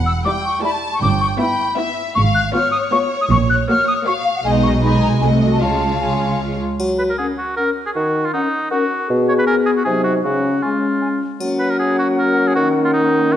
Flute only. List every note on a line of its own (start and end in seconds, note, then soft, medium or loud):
0.06 0.12 E6 medium
0.25 0.31 D6 medium
0.45 0.64 C#6 medium
0.64 0.71 B5 medium
0.94 1.02 C#6 medium
1.02 1.08 D6 medium
1.21 1.27 C#6 medium
1.39 1.77 B5 medium
2.15 2.21 C#6 medium
2.35 2.41 F#6 medium
2.54 2.71 F6 medium
2.71 2.77 D#6 medium
2.92 2.99 C#6 medium
3.21 3.26 D#6 medium
3.31 3.37 C#6 medium
3.50 3.56 F#6 medium
3.69 3.87 F6 medium
3.88 3.94 D#6 medium
4.07 4.13 C#6 medium
4.25 4.30 F5 medium
4.36 4.40 F#5 medium
4.45 4.51 G#5 medium
4.63 4.69 C#6 medium
4.82 5.01 B5 medium
5.02 5.08 A#5 medium
5.21 5.28 G#5 medium
5.53 5.62 A5 soft
5.62 6.03 A5 medium
6.02 6.41 G#5 soft
7.19 7.26 F#5 soft
7.57 7.64 F#5 soft
8.34 8.41 F#5 soft
8.71 8.78 F#5 soft
9.47 9.54 G#5 soft
9.85 9.92 G#5 soft
10.62 10.69 G#5 soft
11.01 11.08 G#5 soft
11.41 13.37 F#5 soft